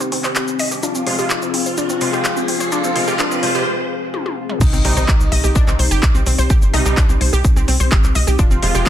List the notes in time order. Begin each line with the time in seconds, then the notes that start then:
Already playing: C4 D#4 G4, riser
0.00 C2 C4, shaker
0.12 C2 C4, open hi-hat, shaker
0.24 C2 C5, clap, shaker
0.36 G1 G4, clap, shaker
0.48 G1, shaker
0.59 G1 D#5, open hi-hat, shaker
0.71 G1 G4, shaker
0.83 F1 D4 F4 G#4, shaker
0.95 C4, shaker
1.07 C3 G#3 F4 C5, open hi-hat
1.19 C3 G#3 F4 G4, shaker
1.30 F1, clap, shaker
1.42 C4, shaker
1.54 C4, open hi-hat
1.66 C5, shaker
1.77 F1 D4 F4, shaker
1.89 C4, shaker
2.01 C3 G#3 F4 C5, open hi-hat, shaker
2.13 F2 C3 G#3 F4 G4, shaker
2.25 clap, shaker
2.37 C4, shaker
2.48 C4, open hi-hat, shaker
2.60 C5, shaker
2.72 D4 F4, shaker
2.84 C2 C4, shaker
2.96 C3 G#3 F4 C5, open hi-hat
3.08 C3 G#3 F4 G4, shaker
3.19 D4 F4, clap, shaker
3.31 C4, shaker
3.43 C3 G#3 F4 C5, open hi-hat, shaker
3.55 C3 G#3 F4 G4, shaker
4.14 high tom
4.26 high tom
4.49 mid tom
4.61 C2 C4 D#4 G4, kick, crash, impact, shaker
4.73 C2 C4, shaker
4.85 C2 C3 G3 C4 D#4, open hi-hat
4.97 C2 C3 G3 D#4 C5, shaker
5.08 C2 G4, kick, clap, shaker
5.20 C2, shaker
5.32 C2 D#5, open hi-hat
5.44 C2 G4, shaker
5.55 C2 D4, kick, shaker
5.67 C2 C4, clap, shaker
5.79 C2 C5, open hi-hat, shaker
5.91 G1 G4, shaker
6.03 C2, kick, clap, shaker
6.15 C2 C4, shaker
6.26 C2 C4, open hi-hat, shaker
6.38 C2 C5, shaker
6.50 C2 G4, kick, shaker
6.62 G1, shaker
6.74 C2 C3 G3 D#4 D#5, open hi-hat, shaker
6.86 C2 C3 G3 D#4 G4, shaker
6.97 C2 D4, kick, clap, shaker
7.09 C2 C4, shaker
7.21 C2 C5, open hi-hat
7.33 C2 G4, shaker
7.45 C2, kick, shaker
7.56 C2 C4, shaker
7.68 C2 C4, open hi-hat, shaker
7.80 C2 C5, shaker
7.92 G1 G4, kick, clap, shaker
8.04 C2, clap, shaker
8.15 C2 D#5, open hi-hat, shaker
8.27 C2 G4, shaker
8.39 F1 D4 F4 G#4, kick, shaker
8.51 F1 C4, shaker
8.62 F1 C3 G#3 F4 C5, open hi-hat
8.75 F1 C3 G#3 F4 G4, shaker